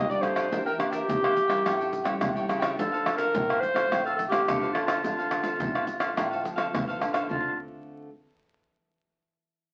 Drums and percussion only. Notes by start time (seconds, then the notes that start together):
0.11 pandeiro, shaker
0.23 pandeiro, tamborim, shaker
0.36 pandeiro, tamborim, shaker, surdo
0.52 pandeiro, shaker, surdo
0.67 pandeiro, shaker
0.80 pandeiro, tamborim, shaker, surdo
0.93 pandeiro, shaker
1.09 pandeiro, shaker, surdo
1.24 pandeiro, tamborim, shaker
1.37 pandeiro, shaker
1.50 pandeiro, tamborim, shaker, surdo
1.66 pandeiro, tamborim, shaker, surdo
1.81 pandeiro, shaker
1.93 pandeiro, shaker, surdo
2.05 pandeiro, tamborim, shaker, surdo
2.21 pandeiro, tamborim, shaker, surdo
2.37 pandeiro, shaker
2.49 pandeiro, tamborim, shaker
2.62 pandeiro, tamborim, shaker, surdo
2.79 pandeiro, shaker, surdo
2.94 pandeiro, shaker
3.06 pandeiro, tamborim, shaker, surdo
3.18 pandeiro, shaker
3.35 pandeiro, shaker, surdo
3.50 pandeiro, tamborim, shaker
3.63 pandeiro, shaker
3.76 pandeiro, tamborim, shaker, surdo
3.92 pandeiro, tamborim, shaker, surdo
4.07 pandeiro, shaker
4.19 pandeiro, surdo
4.32 pandeiro, tamborim, shaker, surdo
4.48 pandeiro, tamborim, shaker, surdo
4.63 pandeiro, shaker
4.75 pandeiro, tamborim
4.88 pandeiro, tamborim, shaker, surdo
5.04 pandeiro, shaker, surdo
5.19 pandeiro, shaker
5.31 pandeiro, tamborim, shaker, surdo
5.44 pandeiro, shaker
5.60 pandeiro, shaker, surdo
5.75 pandeiro, tamborim, shaker
5.87 pandeiro, shaker
6.00 pandeiro, tamborim, shaker, surdo
6.17 pandeiro, tamborim, shaker, surdo
6.33 pandeiro, shaker
6.45 pandeiro, shaker, surdo
6.58 pandeiro, tamborim, shaker, surdo
6.75 pandeiro, tamborim, shaker, surdo
6.89 pandeiro, shaker
7.01 pandeiro, tamborim
7.14 pandeiro, tamborim, shaker, surdo
7.31 surdo